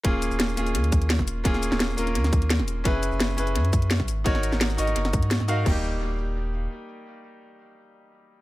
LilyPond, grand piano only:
\new Staff \with { instrumentName = "Grand piano" } { \time 4/4 \key ees \mixolydian \tempo 4 = 171 <bes des' f' aes'>4. <bes des' f' aes'>2~ <bes des' f' aes'>8 | <bes des' f' aes'>4. <bes des' f' bes'>2~ <bes des' f' bes'>8 | <des' fes' aes' ces''>4. <des' fes' aes' ces''>2 r8 | <ees' ges' bes' des''>4. <ees' ges' bes' ees''>2 <ees' ges' bes' f''>8 |
<g bes ees' g'>1~ | <g bes ees' g'>1 | }